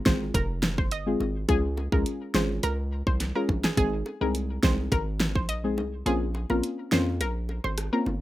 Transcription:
0.05 0.32 G#1 medium
0.05 0.32 G#3 medium
0.05 0.32 C4 medium
0.05 0.32 F4 medium
0.05 0.32 G#4 medium
0.05 0.17 C5 medium
0.05 kick loud
0.05 snare loud
0.34 0.80 F1 loud
0.34 0.45 A#4 medium
0.34 kick loud
0.34 closed hi-hat medium
0.34 high bongo medium
0.63 snare loud
0.78 1.16 G1 medium
0.78 0.88 C5 medium
0.78 kick medium
0.91 1.33 D#5 medium
0.91 closed hi-hat medium
1.06 1.25 G#3 medium
1.06 1.25 C4 medium
1.06 1.26 F4 medium
1.06 1.26 G#4 medium
1.20 1.46 G#1 medium
1.20 low bongo medium
1.48 1.88 C#2 loud
1.48 1.69 G#3 loud
1.48 1.69 C#4 medium
1.48 1.69 F4 medium
1.48 1.69 G#4 loud
1.48 kick loud
1.48 closed hi-hat medium
1.48 high bongo medium
1.77 high bongo medium
1.92 2.05 C#2 loud
1.92 2.31 G#3 medium
1.92 2.31 C#4 medium
1.92 2.31 F4 medium
1.92 2.31 G#4 medium
1.92 2.02 A#4 medium
1.92 kick loud
2.06 closed hi-hat medium
2.34 2.60 G#1 loud
2.34 2.61 G#3 medium
2.34 2.61 C#4 medium
2.34 2.61 F4 medium
2.34 2.61 G#4 medium
2.34 2.45 C5 medium
2.34 snare loud
2.63 3.03 C#2 loud
2.63 2.74 A#4 medium
2.63 closed hi-hat medium
2.63 high bongo medium
3.07 3.33 C2 medium
3.07 3.16 C5 medium
3.07 kick medium
3.20 snare medium
3.20 closed hi-hat medium
3.35 3.54 G#3 medium
3.35 3.54 C#4 medium
3.35 3.54 F4 medium
3.35 3.54 G#4 medium
3.35 3.45 A#4 medium
3.49 3.63 A#1 medium
3.49 kick medium
3.49 low bongo medium
3.64 3.74 G#4 medium
3.64 snare loud
3.77 4.03 G#1 loud
3.77 3.97 G#3 loud
3.77 3.97 C4 medium
3.77 3.97 D#4 medium
3.77 3.98 G#4 loud
3.77 3.97 G#4 loud
3.77 kick loud
3.77 closed hi-hat medium
3.77 high bongo medium
4.06 high bongo medium
4.21 4.59 C2 medium
4.21 4.60 G#3 medium
4.21 4.60 C4 medium
4.21 4.60 D#4 medium
4.21 4.60 G#4 medium
4.21 4.31 A#4 medium
4.35 closed hi-hat medium
4.63 4.89 C2 medium
4.63 4.89 G#3 medium
4.63 4.89 C4 medium
4.63 4.89 D#4 medium
4.63 4.90 G#4 medium
4.63 4.74 C5 medium
4.63 kick loud
4.63 snare loud
4.92 5.37 G#1 loud
4.92 5.03 A#4 medium
4.92 kick loud
4.92 closed hi-hat medium
4.92 high bongo medium
5.20 snare loud
5.35 5.79 A#1 loud
5.35 5.45 C5 medium
5.35 kick medium
5.49 5.90 D#5 medium
5.49 closed hi-hat medium
5.64 5.83 G#3 medium
5.64 5.83 C4 medium
5.64 5.83 D#4 medium
5.64 5.83 G#4 medium
5.78 6.03 C2 medium
5.78 low bongo medium
6.05 6.46 A#1 loud
6.05 6.26 A#3 medium
6.05 6.26 C4 medium
6.05 6.26 C#4 medium
6.05 6.26 F4 loud
6.05 6.26 G#4 loud
6.05 closed hi-hat medium
6.05 high bongo medium
6.35 high bongo medium
6.49 6.62 A#1 loud
6.49 6.88 A#3 medium
6.49 6.88 C4 medium
6.49 6.89 C#4 medium
6.49 6.89 F4 medium
6.49 6.59 A#4 medium
6.49 high bongo medium
6.63 closed hi-hat medium
6.91 7.22 F2 medium
6.91 7.18 A#3 medium
6.91 7.18 C4 medium
6.91 7.18 C#4 medium
6.91 7.18 F4 medium
6.91 7.03 C5 medium
6.91 snare loud
7.20 7.60 A#1 loud
7.20 7.31 A#4 medium
7.20 closed hi-hat medium
7.20 high bongo medium
7.49 high bongo medium
7.64 7.90 G#1 medium
7.64 7.74 C5 medium
7.64 high bongo medium
7.78 cross-stick medium
7.78 closed hi-hat medium
7.92 8.11 A#3 medium
7.92 8.11 C4 medium
7.92 8.12 C#4 medium
7.92 8.12 F4 medium
7.92 8.02 A#4 medium
8.06 8.20 G1 medium
8.06 low bongo medium

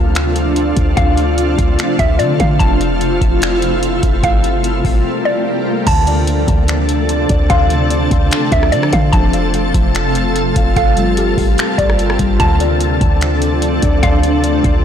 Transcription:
0.00 0.73 D2 loud
0.00 5.83 C3 medium
0.00 4.19 F3 medium
0.00 5.83 A3 medium
0.00 2.57 D4 medium
0.00 5.83 F4 medium
0.00 0.11 A5 loud
0.15 finger snap loud
0.15 closed hi-hat medium
0.36 closed hi-hat medium
0.56 closed hi-hat medium
0.77 0.96 D2 loud
0.77 kick medium
0.77 closed hi-hat medium
0.97 1.56 D2 loud
0.97 1.35 F5 loud
0.97 kick loud
0.97 closed hi-hat medium
1.17 closed hi-hat medium
1.38 closed hi-hat medium
1.58 1.78 D2 loud
1.58 kick medium
1.58 closed hi-hat medium
1.79 finger snap loud
1.79 closed hi-hat medium
1.99 2.21 D2 loud
1.99 2.18 E5 medium
1.99 kick loud
1.99 closed hi-hat medium
2.19 2.39 D3 loud
2.19 2.39 D5 medium
2.19 closed hi-hat medium
2.40 2.59 D3 loud
2.40 2.59 F5 medium
2.40 kick medium
2.40 closed hi-hat medium
2.59 3.19 F1 loud
2.59 4.22 E4 medium
2.59 3.37 A5 loud
2.59 kick loud
2.59 closed hi-hat medium
2.81 closed hi-hat medium
3.01 closed hi-hat medium
3.21 4.00 F1 loud
3.21 kick medium
3.21 closed hi-hat medium
3.42 finger snap loud
3.42 closed hi-hat medium
3.62 closed hi-hat medium
3.83 closed hi-hat medium
4.03 4.23 F1 loud
4.03 kick medium
4.03 closed hi-hat medium
4.23 4.82 G1 loud
4.23 5.85 G3 medium
4.23 5.85 A#3 medium
4.23 4.62 F5 medium
4.23 kick loud
4.23 closed hi-hat medium
4.44 closed hi-hat medium
4.64 closed hi-hat medium
4.85 5.04 G1 loud
4.85 kick medium
4.85 open hi-hat soft
5.25 5.83 D5 medium
5.86 6.45 D2 loud
5.86 10.73 C3 medium
5.86 6.47 D3 medium
5.86 10.73 F3 medium
5.86 10.73 A3 medium
5.86 9.10 D4 medium
5.86 14.85 A4 medium
5.86 6.64 A5 loud
5.86 kick loud
5.86 closed hi-hat medium
5.86 crash loud
6.07 7.28 D5 medium
6.07 closed hi-hat medium
6.27 closed hi-hat medium
6.48 7.26 D2 loud
6.48 7.69 D3 medium
6.48 kick medium
6.48 closed hi-hat medium
6.68 finger snap loud
6.68 closed hi-hat medium
6.89 closed hi-hat medium
7.09 closed hi-hat medium
7.29 7.49 D2 loud
7.29 7.89 D5 medium
7.29 kick medium
7.29 closed hi-hat medium
7.50 8.09 D2 loud
7.50 7.88 F5 loud
7.50 8.72 C6 loud
7.50 kick loud
7.50 closed hi-hat medium
7.70 8.92 D3 medium
7.70 closed hi-hat medium
7.90 9.13 D5 medium
7.90 closed hi-hat medium
8.11 8.31 D2 loud
8.11 kick medium
8.11 closed hi-hat medium
8.31 finger snap loud
8.31 closed hi-hat medium
8.52 8.74 D2 loud
8.52 8.72 E5 medium
8.52 kick loud
8.52 closed hi-hat medium
8.63 cross-stick medium
8.72 8.92 D3 loud
8.72 8.92 D5 medium
8.72 closed hi-hat medium
8.83 cross-stick loud
8.93 9.12 D3 loud
8.93 9.13 D3 medium
8.93 9.12 F5 medium
8.93 kick medium
8.93 closed hi-hat medium
9.13 9.72 F1 loud
9.13 9.73 F3 medium
9.13 10.75 F4 medium
9.13 9.90 A5 loud
9.13 kick loud
9.13 closed hi-hat medium
9.33 10.56 F5 medium
9.33 closed hi-hat medium
9.54 closed hi-hat medium
9.74 10.53 F1 loud
9.74 10.77 F3 medium
9.74 kick medium
9.74 closed hi-hat medium
9.95 finger snap loud
9.95 closed hi-hat medium
10.15 closed hi-hat medium
10.36 closed hi-hat medium
10.56 10.76 F1 loud
10.56 10.77 F5 medium
10.56 kick medium
10.56 closed hi-hat medium
10.76 11.35 G1 loud
10.76 14.85 C3 medium
10.76 12.38 G3 medium
10.76 12.38 A#3 medium
10.76 12.38 F4 medium
10.76 11.99 A4 loud
10.76 11.15 F5 loud
10.76 kick loud
10.76 closed hi-hat medium
10.97 12.18 G3 medium
10.97 closed hi-hat medium
11.17 12.40 G4 medium
11.17 closed hi-hat medium
11.38 11.57 G1 loud
11.38 kick medium
11.38 open hi-hat soft
11.58 finger snap loud
11.58 closed hi-hat medium
11.78 12.18 G1 loud
11.78 12.36 D5 medium
11.78 kick loud
11.78 closed hi-hat medium
11.90 cross-stick medium
11.99 closed hi-hat medium
12.10 cross-stick loud
12.19 12.39 G1 loud
12.19 12.40 G3 medium
12.19 kick medium
12.19 closed hi-hat medium
12.39 12.98 D2 loud
12.39 13.00 D3 medium
12.39 14.85 F3 medium
12.39 14.85 A3 medium
12.39 14.85 D4 medium
12.39 13.17 A5 loud
12.39 kick loud
12.39 closed hi-hat medium
12.60 13.81 D5 medium
12.60 closed hi-hat medium
12.81 closed hi-hat medium
13.01 13.79 D2 loud
13.01 14.22 D3 medium
13.01 kick medium
13.01 closed hi-hat medium
13.21 finger snap loud
13.21 closed hi-hat medium
13.42 closed hi-hat medium
13.62 closed hi-hat medium
13.82 14.02 D2 loud
13.82 14.42 D5 medium
13.82 kick medium
13.82 closed hi-hat medium
14.03 14.62 D2 loud
14.03 14.41 F5 loud
14.03 14.85 C6 loud
14.03 kick loud
14.03 closed hi-hat medium
14.23 14.85 D3 medium
14.23 closed hi-hat medium
14.44 14.85 D5 medium
14.44 closed hi-hat medium
14.64 14.84 D2 loud
14.64 kick medium
14.64 closed hi-hat medium

